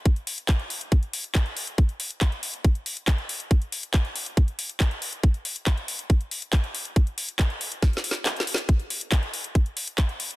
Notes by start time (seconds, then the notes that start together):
0.06 kick, closed hi-hat
0.16 closed hi-hat
0.27 open hi-hat
0.38 closed hi-hat
0.49 kick, clap, closed hi-hat
0.59 closed hi-hat
0.70 open hi-hat
0.81 closed hi-hat
0.92 kick, closed hi-hat
1.03 closed hi-hat
1.13 open hi-hat
1.24 closed hi-hat
1.35 kick, clap, closed hi-hat
1.46 closed hi-hat
1.57 open hi-hat
1.67 closed hi-hat
1.78 kick, closed hi-hat
1.89 closed hi-hat
2.00 open hi-hat
2.11 closed hi-hat
2.21 kick, clap, closed hi-hat
2.32 closed hi-hat
2.43 open hi-hat
2.54 closed hi-hat
2.64 kick, closed hi-hat
2.75 closed hi-hat
2.86 open hi-hat
2.97 closed hi-hat
3.08 kick, clap, closed hi-hat
3.18 closed hi-hat
3.29 open hi-hat
3.40 closed hi-hat
3.51 kick, closed hi-hat
3.62 closed hi-hat
3.72 open hi-hat
3.83 closed hi-hat
3.94 kick, clap, closed hi-hat
4.05 closed hi-hat
4.16 open hi-hat
4.26 closed hi-hat
4.37 kick, closed hi-hat
4.48 closed hi-hat
4.59 open hi-hat
4.70 closed hi-hat
4.80 kick, clap, closed hi-hat
4.91 closed hi-hat
5.02 open hi-hat
5.13 closed hi-hat
5.23 kick, closed hi-hat
5.34 closed hi-hat
5.45 open hi-hat
5.56 closed hi-hat
5.67 kick, clap, closed hi-hat
5.77 closed hi-hat
5.88 open hi-hat
5.99 closed hi-hat
6.10 kick, closed hi-hat
6.21 closed hi-hat
6.31 open hi-hat
6.42 closed hi-hat
6.53 kick, clap, closed hi-hat
6.64 closed hi-hat
6.75 open hi-hat
6.85 closed hi-hat
6.96 kick, closed hi-hat
7.07 closed hi-hat
7.18 open hi-hat
7.29 closed hi-hat
7.39 kick, clap, closed hi-hat
7.50 closed hi-hat
7.61 open hi-hat
7.72 closed hi-hat
7.82 kick, snare, closed hi-hat
7.93 snare, closed hi-hat
8.04 open hi-hat
8.11 snare, closed hi-hat
8.26 snare, clap, closed hi-hat
8.36 snare, closed hi-hat
8.47 open hi-hat
8.54 snare, closed hi-hat
8.69 kick, closed hi-hat
8.80 closed hi-hat
8.90 open hi-hat
9.01 closed hi-hat
9.12 kick, clap, closed hi-hat
9.23 closed hi-hat
9.34 open hi-hat
9.44 closed hi-hat
9.55 kick, closed hi-hat
9.66 closed hi-hat
9.77 open hi-hat
9.88 closed hi-hat
9.98 kick, clap, closed hi-hat
10.09 closed hi-hat
10.20 open hi-hat
10.31 closed hi-hat